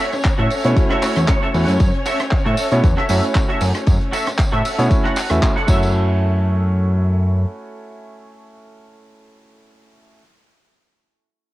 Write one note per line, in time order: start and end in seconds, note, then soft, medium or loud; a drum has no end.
0.00 0.61 A3 medium
0.00 0.61 C#4 medium
0.00 5.68 C#4 medium
0.00 0.62 E4 medium
0.00 0.13 F#4 loud
0.00 0.62 F#4 medium
0.00 0.13 A4 loud
0.00 0.13 C#5 loud
0.00 0.62 C#5 medium
0.00 5.68 C#5 medium
0.00 0.13 E5 loud
0.12 cross-stick medium
0.12 closed hi-hat medium
0.12 tambourine medium
0.24 muted clean electric guitar stroke soft
0.24 kick loud
0.24 clap loud
0.24 closed hi-hat medium
0.24 ride medium
0.24 tambourine soft
0.38 0.49 A2 medium
0.38 0.64 F#4 medium
0.38 0.65 A4 medium
0.38 0.65 C#5 medium
0.38 0.65 E5 loud
0.38 closed hi-hat soft
0.50 open hi-hat loud
0.50 ride medium
0.50 tambourine loud
0.65 0.75 B2 loud
0.65 1.00 A3 loud
0.65 1.00 C#4 medium
0.65 1.00 E4 medium
0.65 1.00 F#4 medium
0.65 1.00 C#5 loud
0.65 closed hi-hat medium
0.65 tambourine soft
0.76 kick loud
0.76 closed hi-hat medium
0.76 ride medium
0.76 tambourine soft
0.90 1.16 F#4 loud
0.90 1.16 A4 medium
0.90 1.17 C#5 loud
0.90 1.17 E5 loud
0.90 cross-stick medium
0.90 closed hi-hat medium
1.02 1.51 A3 medium
1.02 1.52 C#4 medium
1.02 1.52 E4 medium
1.02 1.52 F#4 medium
1.02 1.52 C#5 medium
1.02 clap medium
1.02 open hi-hat loud
1.02 ride medium
1.02 tambourine medium
1.16 1.26 E2 medium
1.16 cross-stick medium
1.16 closed hi-hat medium
1.16 tambourine medium
1.28 1.42 C#5 medium
1.28 kick loud
1.28 clap loud
1.28 closed hi-hat medium
1.28 ride medium
1.28 tambourine soft
1.42 1.54 F#4 medium
1.42 1.54 A4 medium
1.42 1.55 C#5 medium
1.42 1.54 E5 loud
1.42 closed hi-hat soft
1.54 1.66 E2 loud
1.54 1.77 A3 medium
1.54 1.77 C#4 medium
1.54 1.77 E4 medium
1.54 1.77 F#4 medium
1.54 1.78 C#5 medium
1.54 1.68 F#5 medium
1.54 open hi-hat loud
1.54 ride loud
1.54 tambourine medium
1.68 1.78 F#2 medium
1.68 muted clean electric guitar stroke soft
1.68 closed hi-hat medium
1.68 tambourine medium
1.80 1.92 F#2 loud
1.80 kick loud
1.80 closed hi-hat medium
1.80 ride medium
1.80 tambourine soft
1.94 closed hi-hat soft
2.06 2.20 F#4 loud
2.06 2.20 A4 medium
2.06 2.20 C#5 loud
2.06 2.20 E5 loud
2.06 open hi-hat loud
2.06 ride loud
2.06 tambourine medium
2.19 cross-stick medium
2.19 closed hi-hat medium
2.19 tambourine soft
2.31 muted clean electric guitar stroke soft
2.31 kick loud
2.31 clap loud
2.31 closed hi-hat medium
2.31 tambourine soft
2.45 2.56 A2 medium
2.45 2.71 F#4 medium
2.45 2.72 A4 medium
2.45 2.72 C#5 medium
2.45 2.72 E5 loud
2.45 closed hi-hat soft
2.57 open hi-hat loud
2.57 ride loud
2.57 tambourine loud
2.71 2.81 B2 loud
2.71 2.85 A3 medium
2.71 2.85 C#4 medium
2.71 2.85 E4 medium
2.71 2.85 F#4 medium
2.71 2.85 C#5 loud
2.71 closed hi-hat medium
2.71 tambourine soft
2.83 2.95 E2 loud
2.83 kick loud
2.83 closed hi-hat medium
2.83 ride medium
2.83 tambourine soft
2.97 3.23 F#4 loud
2.97 3.23 A4 loud
2.97 3.24 C#5 medium
2.97 3.24 E5 loud
2.97 cross-stick medium
2.97 closed hi-hat soft
3.09 3.21 F#2 loud
3.09 4.75 A3 medium
3.09 4.75 C#4 medium
3.09 4.75 E4 medium
3.09 4.76 F#4 medium
3.09 4.76 C#5 medium
3.09 open hi-hat loud
3.09 ride loud
3.09 tambourine medium
3.23 closed hi-hat medium
3.23 tambourine soft
3.35 kick loud
3.35 clap loud
3.35 closed hi-hat medium
3.35 ride medium
3.35 tambourine soft
3.49 3.61 F#4 medium
3.49 3.61 A4 medium
3.49 3.61 C#5 medium
3.49 3.62 E5 medium
3.49 closed hi-hat soft
3.61 3.73 F#2 loud
3.61 open hi-hat loud
3.61 ride medium
3.61 tambourine medium
3.75 muted clean electric guitar stroke soft
3.75 cross-stick medium
3.75 closed hi-hat medium
3.75 tambourine medium
3.86 3.98 F#2 loud
3.86 kick loud
3.86 closed hi-hat medium
3.86 ride medium
3.86 tambourine soft
4.01 closed hi-hat soft
4.12 4.27 F#4 loud
4.12 4.27 A4 loud
4.12 4.27 C#5 medium
4.12 4.27 E5 loud
4.12 open hi-hat medium
4.12 ride medium
4.12 tambourine medium
4.27 cross-stick medium
4.27 closed hi-hat medium
4.27 tambourine soft
4.38 muted clean electric guitar stroke soft
4.38 kick loud
4.38 clap loud
4.38 closed hi-hat medium
4.38 ride medium
4.38 tambourine soft
4.52 4.62 A2 medium
4.52 4.78 F#4 medium
4.52 4.79 A4 medium
4.52 4.79 C#5 medium
4.52 4.79 E5 loud
4.52 closed hi-hat soft
4.65 open hi-hat loud
4.65 ride medium
4.65 tambourine loud
4.78 4.88 B2 loud
4.78 5.13 A3 loud
4.78 5.14 C#4 medium
4.78 5.14 E4 medium
4.78 5.14 F#4 medium
4.78 5.14 C#5 loud
4.78 closed hi-hat medium
4.78 tambourine soft
4.91 kick loud
4.91 closed hi-hat medium
4.91 ride medium
4.91 tambourine soft
5.04 5.30 F#4 loud
5.04 5.30 A4 medium
5.04 5.30 C#5 loud
5.04 5.31 F#5 loud
5.04 cross-stick medium
5.04 closed hi-hat soft
5.16 clap medium
5.16 open hi-hat loud
5.16 ride medium
5.16 tambourine medium
5.30 5.40 E2 medium
5.30 5.52 A3 medium
5.30 5.52 C#4 medium
5.30 5.53 E4 medium
5.30 5.53 F#4 medium
5.30 5.53 E5 medium
5.30 cross-stick medium
5.30 closed hi-hat medium
5.30 tambourine medium
5.42 kick loud
5.42 clap loud
5.42 closed hi-hat medium
5.42 tambourine soft
5.56 5.65 F#4 medium
5.56 5.67 A4 medium
5.56 5.68 C#5 medium
5.56 5.69 F#5 medium
5.56 closed hi-hat soft
5.66 7.45 F#2 loud
5.66 10.19 A3 medium
5.66 10.20 C#4 medium
5.66 10.20 E4 medium
5.66 10.18 F#4 medium
5.66 10.21 F#4 medium
5.66 10.21 A4 medium
5.66 10.22 C#5 loud
5.66 kick loud
5.66 crash medium
5.66 tambourine medium
5.71 10.23 E5 medium
5.83 tambourine medium